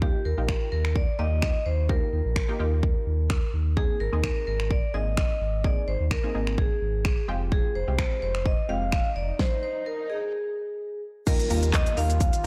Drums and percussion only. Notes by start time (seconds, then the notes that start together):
0.02 kick
0.48 finger snap, kick
0.85 finger snap
0.96 kick
1.42 finger snap, kick
1.89 kick
2.36 finger snap, kick
2.83 kick
3.30 finger snap, kick
3.77 kick
4.23 finger snap, kick
4.60 finger snap
4.71 kick
5.17 finger snap, kick
5.64 kick
6.11 finger snap, kick
6.47 finger snap
6.58 kick
7.05 finger snap, kick
7.52 kick
7.98 finger snap, kick
8.35 finger snap
8.46 kick
8.92 finger snap, kick
9.39 kick, snare
11.27 kick, closed hi-hat, crash, shaker
11.39 closed hi-hat, shaker
11.50 open hi-hat, shaker
11.63 closed hi-hat, shaker
11.73 kick, clap, closed hi-hat, shaker
11.86 closed hi-hat, shaker
11.97 open hi-hat, shaker
12.10 closed hi-hat, shaker
12.21 kick, closed hi-hat, shaker
12.33 closed hi-hat, shaker